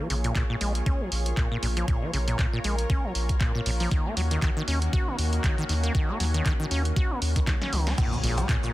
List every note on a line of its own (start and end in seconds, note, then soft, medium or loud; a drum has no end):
0.00 7.94 A#3 medium
0.00 3.87 F4 medium
0.00 1.86 G#4 medium
0.00 3.87 C#5 medium
0.10 0.31 A#1 medium
0.10 0.15 C#3 medium
0.10 open hi-hat loud
0.24 0.34 A#2 medium
0.24 closed hi-hat medium
0.35 0.43 A#2 loud
0.35 kick loud
0.35 clap loud
0.35 closed hi-hat soft
0.50 0.56 A#2 loud
0.61 0.82 A#1 medium
0.61 0.73 G#3 medium
0.61 open hi-hat loud
0.75 closed hi-hat medium
0.86 1.02 C#4 medium
0.86 kick loud
0.86 closed hi-hat soft
1.01 1.10 F3 medium
1.12 1.32 A#1 medium
1.12 open hi-hat loud
1.26 closed hi-hat medium
1.37 1.49 A#2 medium
1.37 kick loud
1.37 clap loud
1.37 closed hi-hat soft
1.51 1.58 A#2 medium
1.63 1.83 A#1 medium
1.63 1.67 A#2 medium
1.63 open hi-hat loud
1.77 1.86 F3 medium
1.77 closed hi-hat medium
1.88 2.04 A#2 medium
1.88 3.89 A#4 medium
1.88 kick loud
1.88 closed hi-hat medium
2.02 2.12 F3 loud
2.13 2.34 A#1 loud
2.13 2.18 C#3 medium
2.13 open hi-hat loud
2.28 2.37 A#2 medium
2.28 closed hi-hat medium
2.39 2.47 A#2 loud
2.39 kick loud
2.39 clap loud
2.39 closed hi-hat soft
2.53 2.59 A#2 loud
2.64 2.85 A#1 medium
2.64 2.76 G#3 medium
2.64 open hi-hat loud
2.78 closed hi-hat medium
2.90 3.06 C#4 medium
2.90 kick loud
2.90 closed hi-hat medium
3.04 3.13 F3 loud
3.15 3.36 A#1 medium
3.15 open hi-hat loud
3.29 kick medium
3.29 closed hi-hat medium
3.41 3.52 A#2 medium
3.41 kick loud
3.41 clap loud
3.41 closed hi-hat soft
3.55 3.61 A#2 loud
3.66 3.87 A#1 loud
3.66 3.71 A#2 medium
3.66 open hi-hat loud
3.80 3.90 F3 medium
3.80 open hi-hat medium
3.91 7.94 D#3 medium
3.91 4.07 D#3 medium
3.91 7.94 C#4 medium
3.91 7.94 F#4 medium
3.91 kick loud
3.91 closed hi-hat medium
4.06 4.15 A#3 loud
4.17 4.37 D#2 medium
4.17 4.22 F#3 medium
4.17 open hi-hat loud
4.31 4.40 D#3 medium
4.31 closed hi-hat medium
4.42 4.50 D#3 loud
4.42 kick loud
4.42 clap loud
4.42 closed hi-hat soft
4.57 4.63 D#3 loud
4.68 4.88 D#2 medium
4.68 4.79 C#4 medium
4.68 open hi-hat loud
4.82 closed hi-hat medium
4.93 5.09 F#4 medium
4.93 kick loud
4.93 closed hi-hat medium
5.07 5.17 A#3 loud
5.19 5.39 D#2 medium
5.19 open hi-hat loud
5.33 closed hi-hat medium
5.44 5.56 D#3 medium
5.44 kick loud
5.44 clap loud
5.44 closed hi-hat medium
5.58 5.64 D#3 loud
5.69 5.90 D#2 medium
5.69 5.74 D#3 medium
5.69 open hi-hat loud
5.83 5.93 A#3 medium
5.83 closed hi-hat medium
5.95 6.10 D#3 medium
5.95 kick loud
5.95 closed hi-hat medium
6.09 6.18 A#3 loud
6.20 6.41 D#2 loud
6.20 6.25 F#3 medium
6.20 open hi-hat loud
6.34 6.44 D#3 medium
6.34 closed hi-hat medium
6.46 6.53 D#3 loud
6.46 kick loud
6.46 clap loud
6.46 closed hi-hat medium
6.60 6.66 D#3 loud
6.71 6.92 D#2 medium
6.71 6.83 C#4 medium
6.71 open hi-hat loud
6.85 closed hi-hat medium
6.96 7.12 F#4 medium
6.96 kick loud
6.96 closed hi-hat medium
7.11 7.20 A#3 medium
7.22 7.42 D#2 medium
7.22 open hi-hat loud
7.36 7.40 D#3 medium
7.36 kick medium
7.36 closed hi-hat medium
7.47 7.55 D#3 medium
7.47 kick loud
7.47 snare medium
7.47 clap loud
7.47 closed hi-hat medium
7.62 7.74 C#4 medium
7.62 snare medium
7.73 7.93 C#2 medium
7.73 7.88 D#3 medium
7.73 open hi-hat loud
7.87 7.93 D#4 loud
7.87 snare medium
7.87 open hi-hat medium
7.98 8.14 A#2 medium
7.98 8.73 A#3 medium
7.98 8.73 F4 medium
7.98 8.73 G#4 medium
7.98 8.73 C#5 medium
7.98 kick loud
7.98 closed hi-hat medium
7.98 crash loud
7.98 cowbell medium
7.98 impact medium
7.98 shaker medium
8.12 8.19 B2 medium
8.12 shaker soft
8.24 8.44 A#1 loud
8.24 8.39 A#2 medium
8.24 open hi-hat loud
8.38 8.47 G#3 loud
8.38 closed hi-hat medium
8.38 cowbell medium
8.38 shaker medium
8.49 8.57 A#2 loud
8.49 kick loud
8.49 clap loud
8.49 closed hi-hat medium
8.49 shaker medium
8.63 8.73 A#2 medium
8.63 shaker soft